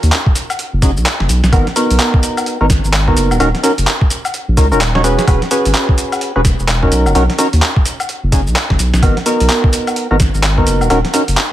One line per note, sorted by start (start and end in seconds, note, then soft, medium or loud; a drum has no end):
0.03 0.11 D#2 medium
0.03 closed hi-hat medium
0.03 cabasa soft
0.12 clap loud
0.12 closed hi-hat medium
0.12 cabasa soft
0.26 kick loud
0.35 closed hi-hat medium
0.35 cabasa medium
0.50 closed hi-hat soft
0.50 cabasa soft
0.50 high woodblock medium
0.59 closed hi-hat medium
0.59 cabasa soft
0.73 0.81 F#1 loud
0.82 0.98 F#1 loud
0.82 0.91 C#4 medium
0.82 0.91 D#4 medium
0.82 0.91 F#4 medium
0.82 0.91 G#4 loud
0.82 kick loud
0.82 closed hi-hat loud
0.82 cabasa medium
0.97 1.05 B1 medium
0.97 cabasa soft
1.06 clap loud
1.06 closed hi-hat medium
1.06 cabasa soft
1.20 1.28 F#1 medium
1.20 snare soft
1.29 1.42 B1 medium
1.29 closed hi-hat medium
1.29 cabasa medium
1.44 1.51 B1 medium
1.44 snare medium
1.44 cabasa soft
1.52 1.65 G#1 loud
1.52 1.66 B3 medium
1.52 1.66 D#4 medium
1.52 1.66 F#4 medium
1.52 1.66 A#4 medium
1.52 kick loud
1.52 closed hi-hat medium
1.52 cabasa soft
1.52 high woodblock medium
1.67 snare soft
1.67 closed hi-hat soft
1.76 2.57 B3 medium
1.76 2.57 D#4 medium
1.76 2.57 F#4 medium
1.76 2.57 A#4 medium
1.76 closed hi-hat loud
1.76 cabasa medium
1.90 1.98 B1 medium
1.90 closed hi-hat medium
1.90 cabasa soft
1.99 clap loud
1.99 closed hi-hat medium
1.99 cabasa soft
2.14 kick loud
2.23 closed hi-hat medium
2.23 cabasa medium
2.37 closed hi-hat soft
2.37 cabasa soft
2.37 high woodblock medium
2.46 closed hi-hat medium
2.46 cabasa soft
2.61 2.81 G#1 medium
2.61 2.66 B3 medium
2.61 2.66 D#4 medium
2.61 2.66 F#4 medium
2.61 2.66 A#4 loud
2.70 kick loud
2.70 snare medium
2.70 closed hi-hat loud
2.70 cabasa medium
2.84 3.15 G#1 medium
2.84 cabasa soft
2.93 clap loud
2.93 closed hi-hat medium
2.93 cabasa soft
3.08 3.38 B3 medium
3.08 3.38 D#4 medium
3.08 3.38 F#4 medium
3.08 3.38 A#4 medium
3.08 kick medium
3.17 3.33 F#1 loud
3.17 closed hi-hat medium
3.17 cabasa medium
3.31 3.39 D#1 medium
3.31 cabasa soft
3.31 high woodblock medium
3.40 3.53 D#1 loud
3.40 3.49 C#4 loud
3.40 3.49 D#4 medium
3.40 3.49 F#4 medium
3.40 3.49 A#4 loud
3.40 closed hi-hat medium
3.40 cabasa soft
3.40 high woodblock medium
3.55 snare soft
3.55 closed hi-hat soft
3.63 3.72 C#4 medium
3.63 3.72 D#4 medium
3.63 3.72 F#4 medium
3.63 3.72 A#4 medium
3.63 closed hi-hat loud
3.63 cabasa medium
3.78 3.86 F#1 medium
3.78 closed hi-hat medium
3.78 cabasa soft
3.87 clap loud
3.87 closed hi-hat medium
3.87 cabasa soft
4.01 kick loud
4.10 closed hi-hat medium
4.10 cabasa medium
4.25 closed hi-hat soft
4.25 cabasa soft
4.25 high woodblock medium
4.34 closed hi-hat medium
4.34 cabasa soft
4.48 4.56 A#1 loud
4.57 4.73 C#2 loud
4.57 4.66 C#4 medium
4.57 4.66 D#4 medium
4.57 4.66 F#4 medium
4.57 4.66 A#4 loud
4.57 kick loud
4.57 closed hi-hat loud
4.57 cabasa medium
4.72 5.06 D#1 medium
4.72 4.80 C#4 medium
4.72 4.80 D#4 medium
4.72 4.80 F#4 medium
4.72 4.80 A#4 loud
4.72 cabasa soft
4.81 clap loud
4.81 closed hi-hat medium
4.81 cabasa soft
4.95 5.02 C#4 medium
4.95 5.02 D#4 medium
4.95 5.02 F#4 medium
4.95 5.02 C#5 medium
4.95 snare soft
5.04 5.17 E1 medium
5.04 5.25 C#4 medium
5.04 5.25 F#4 medium
5.04 5.25 G#4 medium
5.04 5.25 B4 loud
5.04 closed hi-hat medium
5.04 cabasa medium
5.19 snare medium
5.19 cabasa soft
5.27 5.40 E1 loud
5.27 5.41 C#4 medium
5.27 5.41 F#4 medium
5.27 5.41 G#4 medium
5.27 5.41 B4 medium
5.27 kick loud
5.27 closed hi-hat medium
5.27 cabasa soft
5.27 high woodblock medium
5.42 snare soft
5.42 closed hi-hat soft
5.51 6.32 C#4 medium
5.51 6.32 F#4 medium
5.51 6.32 G#4 medium
5.51 6.32 B4 medium
5.51 closed hi-hat loud
5.51 cabasa medium
5.65 5.73 G#1 medium
5.65 closed hi-hat medium
5.65 cabasa soft
5.74 clap loud
5.74 closed hi-hat medium
5.74 cabasa soft
5.89 kick loud
5.98 closed hi-hat loud
5.98 cabasa medium
6.12 closed hi-hat soft
6.12 cabasa soft
6.12 high woodblock medium
6.21 closed hi-hat medium
6.21 cabasa soft
6.36 6.56 E1 medium
6.36 6.41 C#4 medium
6.36 6.41 F#4 medium
6.36 6.41 G#4 medium
6.36 6.41 B4 loud
6.45 kick loud
6.45 snare medium
6.45 closed hi-hat loud
6.45 cabasa medium
6.59 6.90 E1 medium
6.59 cabasa soft
6.68 clap loud
6.68 closed hi-hat medium
6.68 cabasa soft
6.83 7.13 C#4 medium
6.83 7.13 D#4 medium
6.83 7.13 F#4 medium
6.83 7.13 A#4 medium
6.83 kick medium
6.92 7.08 B1 loud
6.92 closed hi-hat medium
6.92 cabasa medium
7.06 7.14 F#1 medium
7.06 cabasa soft
7.06 high woodblock medium
7.15 7.28 B1 loud
7.15 7.24 C#4 loud
7.15 7.24 D#4 medium
7.15 7.24 F#4 medium
7.15 7.24 A#4 loud
7.15 closed hi-hat medium
7.15 cabasa soft
7.15 high woodblock medium
7.30 snare soft
7.30 closed hi-hat soft
7.38 7.47 C#4 medium
7.38 7.47 D#4 medium
7.38 7.47 F#4 medium
7.38 7.47 A#4 loud
7.38 closed hi-hat loud
7.38 cabasa medium
7.53 7.61 D#2 medium
7.53 closed hi-hat medium
7.53 cabasa soft
7.62 clap loud
7.62 closed hi-hat medium
7.62 cabasa soft
7.76 kick loud
7.86 closed hi-hat loud
7.86 cabasa medium
8.00 closed hi-hat soft
8.00 cabasa soft
8.00 high woodblock medium
8.09 closed hi-hat medium
8.09 cabasa soft
8.23 8.31 F#1 loud
8.32 8.48 F#1 loud
8.32 8.41 C#4 medium
8.32 8.41 D#4 medium
8.32 8.41 F#4 medium
8.32 8.41 G#4 loud
8.32 kick loud
8.32 closed hi-hat loud
8.32 cabasa medium
8.47 8.55 B1 medium
8.47 cabasa soft
8.56 clap loud
8.56 closed hi-hat medium
8.56 cabasa soft
8.70 8.78 F#1 loud
8.70 kick medium
8.70 snare medium
8.79 8.92 B1 medium
8.79 closed hi-hat loud
8.79 cabasa medium
8.94 9.01 B1 medium
8.94 snare medium
8.94 cabasa soft
9.03 9.15 G#1 loud
9.03 9.16 B3 medium
9.03 9.16 D#4 medium
9.03 9.16 F#4 medium
9.03 9.16 A#4 medium
9.03 kick loud
9.03 closed hi-hat medium
9.03 cabasa soft
9.03 high woodblock medium
9.17 snare soft
9.17 closed hi-hat soft
9.26 10.07 B3 medium
9.26 10.07 D#4 medium
9.26 10.07 F#4 medium
9.26 10.07 A#4 medium
9.26 closed hi-hat loud
9.26 cabasa medium
9.40 9.48 B1 medium
9.40 closed hi-hat medium
9.40 cabasa soft
9.49 clap loud
9.49 closed hi-hat medium
9.49 cabasa soft
9.64 kick loud
9.73 closed hi-hat loud
9.73 cabasa medium
9.87 closed hi-hat soft
9.87 cabasa soft
9.87 high woodblock medium
9.96 closed hi-hat medium
9.96 cabasa soft
10.11 10.31 G#1 medium
10.11 10.16 B3 medium
10.11 10.16 D#4 medium
10.11 10.16 F#4 medium
10.11 10.16 A#4 loud
10.20 kick loud
10.20 snare medium
10.20 closed hi-hat loud
10.20 cabasa medium
10.34 10.65 G#1 medium
10.34 cabasa soft
10.43 clap loud
10.43 closed hi-hat medium
10.43 cabasa soft
10.58 10.88 B3 medium
10.58 10.88 D#4 medium
10.58 10.88 F#4 medium
10.58 10.88 A#4 medium
10.58 kick medium
10.67 10.83 F#1 loud
10.67 closed hi-hat loud
10.67 cabasa medium
10.81 10.89 D#1 medium
10.81 cabasa soft
10.81 high woodblock medium
10.90 11.03 D#1 loud
10.90 10.99 C#4 loud
10.90 10.99 D#4 medium
10.90 10.99 F#4 medium
10.90 10.99 A#4 loud
10.90 closed hi-hat medium
10.90 cabasa soft
10.90 high woodblock medium
11.05 snare soft
11.05 closed hi-hat soft
11.14 11.22 C#4 medium
11.14 11.22 D#4 medium
11.14 11.22 F#4 medium
11.14 11.22 A#4 medium
11.14 closed hi-hat loud
11.14 cabasa medium
11.28 11.36 F#1 medium
11.28 closed hi-hat medium
11.28 cabasa soft
11.37 clap loud
11.37 closed hi-hat medium
11.37 cabasa soft